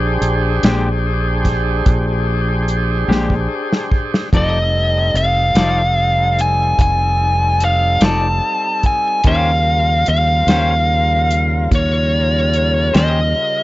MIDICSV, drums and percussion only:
0, 0, Header, 1, 2, 480
1, 0, Start_track
1, 0, Tempo, 821918
1, 2525, Time_signature, 12, 3, 24, 8
1, 7961, End_track
2, 0, Start_track
2, 0, Title_t, "Drums"
2, 128, Note_on_c, 9, 42, 52
2, 186, Note_off_c, 9, 42, 0
2, 369, Note_on_c, 9, 42, 76
2, 376, Note_on_c, 9, 38, 95
2, 427, Note_off_c, 9, 42, 0
2, 435, Note_off_c, 9, 38, 0
2, 846, Note_on_c, 9, 42, 53
2, 847, Note_on_c, 9, 36, 67
2, 854, Note_on_c, 9, 38, 30
2, 905, Note_off_c, 9, 36, 0
2, 905, Note_off_c, 9, 42, 0
2, 912, Note_off_c, 9, 38, 0
2, 1087, Note_on_c, 9, 42, 73
2, 1088, Note_on_c, 9, 36, 98
2, 1145, Note_off_c, 9, 42, 0
2, 1147, Note_off_c, 9, 36, 0
2, 1567, Note_on_c, 9, 42, 49
2, 1625, Note_off_c, 9, 42, 0
2, 1817, Note_on_c, 9, 38, 51
2, 1876, Note_off_c, 9, 38, 0
2, 1927, Note_on_c, 9, 36, 56
2, 1985, Note_off_c, 9, 36, 0
2, 2176, Note_on_c, 9, 38, 64
2, 2234, Note_off_c, 9, 38, 0
2, 2287, Note_on_c, 9, 36, 77
2, 2345, Note_off_c, 9, 36, 0
2, 2419, Note_on_c, 9, 38, 72
2, 2477, Note_off_c, 9, 38, 0
2, 2528, Note_on_c, 9, 36, 96
2, 2531, Note_on_c, 9, 42, 70
2, 2586, Note_off_c, 9, 36, 0
2, 2589, Note_off_c, 9, 42, 0
2, 3010, Note_on_c, 9, 42, 52
2, 3069, Note_off_c, 9, 42, 0
2, 3243, Note_on_c, 9, 42, 69
2, 3251, Note_on_c, 9, 38, 93
2, 3302, Note_off_c, 9, 42, 0
2, 3309, Note_off_c, 9, 38, 0
2, 3730, Note_on_c, 9, 42, 55
2, 3788, Note_off_c, 9, 42, 0
2, 3964, Note_on_c, 9, 36, 98
2, 3967, Note_on_c, 9, 42, 78
2, 4023, Note_off_c, 9, 36, 0
2, 4025, Note_off_c, 9, 42, 0
2, 4441, Note_on_c, 9, 42, 57
2, 4499, Note_off_c, 9, 42, 0
2, 4677, Note_on_c, 9, 42, 72
2, 4684, Note_on_c, 9, 38, 92
2, 4735, Note_off_c, 9, 42, 0
2, 4743, Note_off_c, 9, 38, 0
2, 5159, Note_on_c, 9, 42, 53
2, 5160, Note_on_c, 9, 36, 62
2, 5217, Note_off_c, 9, 42, 0
2, 5219, Note_off_c, 9, 36, 0
2, 5394, Note_on_c, 9, 42, 72
2, 5399, Note_on_c, 9, 36, 90
2, 5452, Note_off_c, 9, 42, 0
2, 5457, Note_off_c, 9, 36, 0
2, 5875, Note_on_c, 9, 42, 52
2, 5933, Note_off_c, 9, 42, 0
2, 6120, Note_on_c, 9, 42, 73
2, 6127, Note_on_c, 9, 38, 87
2, 6178, Note_off_c, 9, 42, 0
2, 6186, Note_off_c, 9, 38, 0
2, 6603, Note_on_c, 9, 42, 52
2, 6661, Note_off_c, 9, 42, 0
2, 6842, Note_on_c, 9, 36, 101
2, 6843, Note_on_c, 9, 42, 72
2, 6900, Note_off_c, 9, 36, 0
2, 6901, Note_off_c, 9, 42, 0
2, 7320, Note_on_c, 9, 42, 49
2, 7379, Note_off_c, 9, 42, 0
2, 7560, Note_on_c, 9, 42, 72
2, 7567, Note_on_c, 9, 38, 93
2, 7618, Note_off_c, 9, 42, 0
2, 7626, Note_off_c, 9, 38, 0
2, 7961, End_track
0, 0, End_of_file